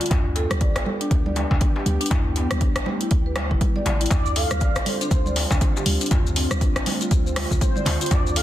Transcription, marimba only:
0, 0, Header, 1, 2, 480
1, 0, Start_track
1, 0, Tempo, 500000
1, 106, Time_signature, 4, 2, 24, 8
1, 8089, End_track
2, 0, Start_track
2, 0, Title_t, "Marimba"
2, 0, Program_c, 0, 12
2, 8, Note_on_c, 0, 65, 97
2, 95, Note_off_c, 0, 65, 0
2, 105, Note_on_c, 0, 62, 81
2, 234, Note_off_c, 0, 62, 0
2, 346, Note_on_c, 0, 69, 101
2, 423, Note_off_c, 0, 69, 0
2, 586, Note_on_c, 0, 74, 83
2, 663, Note_off_c, 0, 74, 0
2, 824, Note_on_c, 0, 69, 74
2, 902, Note_off_c, 0, 69, 0
2, 967, Note_on_c, 0, 62, 98
2, 1055, Note_off_c, 0, 62, 0
2, 1209, Note_on_c, 0, 74, 73
2, 1296, Note_off_c, 0, 74, 0
2, 1448, Note_on_c, 0, 62, 75
2, 1501, Note_off_c, 0, 62, 0
2, 1688, Note_on_c, 0, 67, 77
2, 1741, Note_off_c, 0, 67, 0
2, 1927, Note_on_c, 0, 62, 99
2, 2015, Note_off_c, 0, 62, 0
2, 2264, Note_on_c, 0, 59, 99
2, 2394, Note_off_c, 0, 59, 0
2, 2505, Note_on_c, 0, 62, 79
2, 2641, Note_off_c, 0, 62, 0
2, 2744, Note_on_c, 0, 57, 73
2, 2874, Note_off_c, 0, 57, 0
2, 2890, Note_on_c, 0, 64, 94
2, 2976, Note_off_c, 0, 64, 0
2, 3130, Note_on_c, 0, 71, 73
2, 3217, Note_off_c, 0, 71, 0
2, 3371, Note_on_c, 0, 64, 72
2, 3457, Note_off_c, 0, 64, 0
2, 3611, Note_on_c, 0, 74, 76
2, 3697, Note_off_c, 0, 74, 0
2, 3851, Note_on_c, 0, 64, 102
2, 3937, Note_off_c, 0, 64, 0
2, 3947, Note_on_c, 0, 62, 80
2, 4075, Note_off_c, 0, 62, 0
2, 4189, Note_on_c, 0, 69, 99
2, 4265, Note_off_c, 0, 69, 0
2, 4427, Note_on_c, 0, 74, 82
2, 4504, Note_off_c, 0, 74, 0
2, 4667, Note_on_c, 0, 69, 74
2, 4743, Note_off_c, 0, 69, 0
2, 4811, Note_on_c, 0, 62, 96
2, 4897, Note_off_c, 0, 62, 0
2, 5050, Note_on_c, 0, 74, 71
2, 5136, Note_off_c, 0, 74, 0
2, 5291, Note_on_c, 0, 62, 76
2, 5342, Note_off_c, 0, 62, 0
2, 5531, Note_on_c, 0, 67, 79
2, 5582, Note_off_c, 0, 67, 0
2, 5771, Note_on_c, 0, 62, 100
2, 5857, Note_off_c, 0, 62, 0
2, 5866, Note_on_c, 0, 65, 99
2, 5943, Note_off_c, 0, 65, 0
2, 6108, Note_on_c, 0, 60, 104
2, 6235, Note_off_c, 0, 60, 0
2, 6347, Note_on_c, 0, 62, 80
2, 6482, Note_off_c, 0, 62, 0
2, 6590, Note_on_c, 0, 57, 76
2, 6717, Note_off_c, 0, 57, 0
2, 6732, Note_on_c, 0, 65, 96
2, 6818, Note_off_c, 0, 65, 0
2, 6971, Note_on_c, 0, 72, 74
2, 7057, Note_off_c, 0, 72, 0
2, 7212, Note_on_c, 0, 65, 78
2, 7297, Note_off_c, 0, 65, 0
2, 7454, Note_on_c, 0, 74, 78
2, 7538, Note_off_c, 0, 74, 0
2, 7694, Note_on_c, 0, 65, 101
2, 7778, Note_off_c, 0, 65, 0
2, 7792, Note_on_c, 0, 62, 83
2, 7917, Note_off_c, 0, 62, 0
2, 8027, Note_on_c, 0, 69, 98
2, 8089, Note_off_c, 0, 69, 0
2, 8089, End_track
0, 0, End_of_file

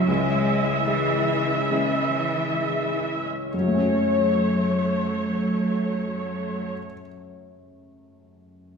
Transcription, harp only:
0, 0, Header, 1, 2, 480
1, 0, Start_track
1, 0, Key_signature, 3, "minor"
1, 0, Tempo, 816327
1, 48, Time_signature, 4, 2, 24, 8
1, 1009, Tempo, 884956
1, 1489, Tempo, 914634
1, 4728, End_track
2, 0, Start_track
2, 0, Title_t, "Harp"
2, 0, Program_c, 0, 46
2, 0, Note_on_c, 0, 56, 36
2, 0, Note_on_c, 0, 61, 32
2, 0, Note_on_c, 0, 64, 35
2, 0, Note_on_c, 0, 68, 37
2, 48, Note_on_c, 0, 49, 44
2, 201, Note_off_c, 0, 56, 0
2, 208, Note_on_c, 0, 56, 31
2, 358, Note_off_c, 0, 64, 0
2, 365, Note_on_c, 0, 64, 35
2, 517, Note_off_c, 0, 68, 0
2, 524, Note_on_c, 0, 68, 33
2, 674, Note_off_c, 0, 64, 0
2, 681, Note_on_c, 0, 64, 29
2, 837, Note_off_c, 0, 61, 0
2, 844, Note_on_c, 0, 61, 29
2, 1009, Note_off_c, 0, 56, 0
2, 1016, Note_on_c, 0, 56, 30
2, 1163, Note_off_c, 0, 61, 0
2, 1170, Note_on_c, 0, 61, 26
2, 1318, Note_off_c, 0, 64, 0
2, 1324, Note_on_c, 0, 64, 26
2, 1483, Note_off_c, 0, 68, 0
2, 1489, Note_on_c, 0, 68, 27
2, 1648, Note_off_c, 0, 64, 0
2, 1655, Note_on_c, 0, 64, 24
2, 1812, Note_off_c, 0, 61, 0
2, 1818, Note_on_c, 0, 61, 24
2, 1978, Note_on_c, 0, 42, 27
2, 1995, Note_off_c, 0, 49, 0
2, 1995, Note_off_c, 0, 68, 0
2, 1997, Note_off_c, 0, 64, 0
2, 1998, Note_off_c, 0, 56, 0
2, 2015, Note_on_c, 0, 54, 26
2, 2053, Note_on_c, 0, 57, 26
2, 2082, Note_off_c, 0, 61, 0
2, 2089, Note_on_c, 0, 61, 27
2, 2125, Note_on_c, 0, 66, 25
2, 2161, Note_on_c, 0, 73, 27
2, 3754, Note_off_c, 0, 61, 0
2, 3790, Note_off_c, 0, 66, 0
2, 3800, Note_off_c, 0, 57, 0
2, 3826, Note_off_c, 0, 73, 0
2, 3953, Note_off_c, 0, 54, 0
2, 4025, Note_off_c, 0, 42, 0
2, 4728, End_track
0, 0, End_of_file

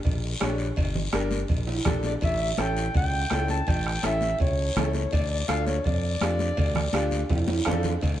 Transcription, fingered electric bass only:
0, 0, Header, 1, 2, 480
1, 0, Start_track
1, 0, Key_signature, -1, "minor"
1, 0, Tempo, 362757
1, 1022, Time_signature, 4, 2, 24, 8
1, 10850, End_track
2, 0, Start_track
2, 0, Title_t, "Fingered electric bass"
2, 0, Program_c, 0, 33
2, 70, Note_on_c, 0, 34, 91
2, 450, Note_off_c, 0, 34, 0
2, 549, Note_on_c, 0, 34, 83
2, 930, Note_off_c, 0, 34, 0
2, 1026, Note_on_c, 0, 31, 112
2, 1408, Note_off_c, 0, 31, 0
2, 1506, Note_on_c, 0, 31, 97
2, 1888, Note_off_c, 0, 31, 0
2, 1983, Note_on_c, 0, 34, 87
2, 2366, Note_off_c, 0, 34, 0
2, 2462, Note_on_c, 0, 34, 85
2, 2846, Note_off_c, 0, 34, 0
2, 2941, Note_on_c, 0, 33, 106
2, 3325, Note_off_c, 0, 33, 0
2, 3425, Note_on_c, 0, 33, 100
2, 3808, Note_off_c, 0, 33, 0
2, 3908, Note_on_c, 0, 37, 94
2, 4289, Note_off_c, 0, 37, 0
2, 4391, Note_on_c, 0, 37, 93
2, 4771, Note_off_c, 0, 37, 0
2, 4867, Note_on_c, 0, 33, 111
2, 5249, Note_off_c, 0, 33, 0
2, 5354, Note_on_c, 0, 33, 85
2, 5733, Note_off_c, 0, 33, 0
2, 5823, Note_on_c, 0, 37, 92
2, 6207, Note_off_c, 0, 37, 0
2, 6305, Note_on_c, 0, 37, 79
2, 6688, Note_off_c, 0, 37, 0
2, 6789, Note_on_c, 0, 38, 101
2, 7170, Note_off_c, 0, 38, 0
2, 7265, Note_on_c, 0, 38, 94
2, 7648, Note_off_c, 0, 38, 0
2, 7753, Note_on_c, 0, 41, 93
2, 8133, Note_off_c, 0, 41, 0
2, 8222, Note_on_c, 0, 41, 78
2, 8606, Note_off_c, 0, 41, 0
2, 8705, Note_on_c, 0, 38, 105
2, 9088, Note_off_c, 0, 38, 0
2, 9175, Note_on_c, 0, 38, 87
2, 9562, Note_off_c, 0, 38, 0
2, 9664, Note_on_c, 0, 41, 84
2, 10047, Note_off_c, 0, 41, 0
2, 10145, Note_on_c, 0, 41, 82
2, 10528, Note_off_c, 0, 41, 0
2, 10621, Note_on_c, 0, 38, 103
2, 10850, Note_off_c, 0, 38, 0
2, 10850, End_track
0, 0, End_of_file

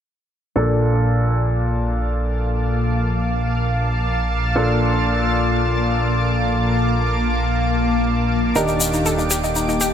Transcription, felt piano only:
0, 0, Header, 1, 2, 480
1, 0, Start_track
1, 0, Key_signature, -2, "major"
1, 0, Tempo, 500000
1, 9538, End_track
2, 0, Start_track
2, 0, Title_t, "Felt piano"
2, 0, Program_c, 0, 0
2, 535, Note_on_c, 0, 46, 68
2, 535, Note_on_c, 0, 58, 66
2, 535, Note_on_c, 0, 62, 64
2, 535, Note_on_c, 0, 69, 76
2, 4347, Note_off_c, 0, 46, 0
2, 4347, Note_off_c, 0, 58, 0
2, 4347, Note_off_c, 0, 62, 0
2, 4347, Note_off_c, 0, 69, 0
2, 4374, Note_on_c, 0, 58, 65
2, 4374, Note_on_c, 0, 62, 67
2, 4374, Note_on_c, 0, 69, 77
2, 4375, Note_on_c, 0, 46, 72
2, 8186, Note_off_c, 0, 58, 0
2, 8186, Note_off_c, 0, 62, 0
2, 8186, Note_off_c, 0, 69, 0
2, 8187, Note_off_c, 0, 46, 0
2, 8215, Note_on_c, 0, 51, 73
2, 8215, Note_on_c, 0, 62, 65
2, 8215, Note_on_c, 0, 63, 66
2, 8215, Note_on_c, 0, 67, 76
2, 9538, Note_off_c, 0, 51, 0
2, 9538, Note_off_c, 0, 62, 0
2, 9538, Note_off_c, 0, 63, 0
2, 9538, Note_off_c, 0, 67, 0
2, 9538, End_track
0, 0, End_of_file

